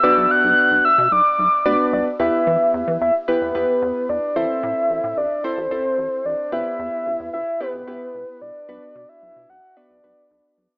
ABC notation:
X:1
M:4/4
L:1/16
Q:1/4=111
K:Em
V:1 name="Soft synth lead"
e'2 f'4 e'2 d'6 d2 | e6 e2 B6 d2 | e6 d2 c6 d2 | e6 e2 B6 d2- |
d3 e3 f2 d6 z2 |]
V:2 name="Synth keys"
[B,DFBd]6 z6 [B,DFBd]4 | [B,EGB]6 z2 [B,EGB]2 [B,EGB]4 z2 | [CEAc]6 z2 [CEAc]2 [CEAc]4 z2 | [B,EGB]6 z2 [B,EGB]2 [B,EGB]4 z2 |
[B,DFB]6 z2 [B,DFB]2 [B,DFB]4 z2 |]
V:3 name="Analog synth bass" clef=bass
B,,, B,,, z B,,, z B,,, z B,, B,,, z B,,, z D,, z C,, z | E,, z E, z E,, E, E,, z2 E,, E,, z E,, z E,, z | A,,, z A,, z A,,, A,, A,,, z2 A,,, A,,, z A,,, z A,,, z | E,,, z E,, z E,,, E,, E,,, z2 E,,, E,,, z E,,, z E,,, z |
B,,, z B,, z B,,, B,, B,,, z2 B,,, B,,, z B,,, z B,,, z |]